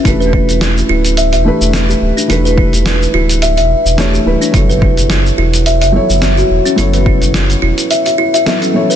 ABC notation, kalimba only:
X:1
M:4/4
L:1/16
Q:"Swing 16ths" 1/4=107
K:Edor
V:1 name="Kalimba"
E B E2 E2 E2 e e z3 G2 D | E B E2 E2 E2 e e z3 G2 D | E B E2 E2 E2 e e z3 F2 C | E B E2 E2 E2 e e E e A C z B |]